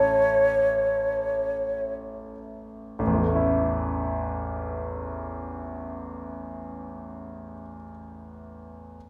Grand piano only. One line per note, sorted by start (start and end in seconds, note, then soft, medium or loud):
0.00 2.94 A1 medium
0.00 2.95 A3 soft
0.00 2.95 C#4 soft
0.00 2.96 E4 soft
0.00 2.30 A4 medium
0.00 2.33 A5 medium
2.99 7.53 A1 medium
3.07 7.61 E2 medium
3.14 7.68 E3 medium
3.21 7.75 A3 medium
3.28 7.82 C#4 soft
3.35 7.89 E4 soft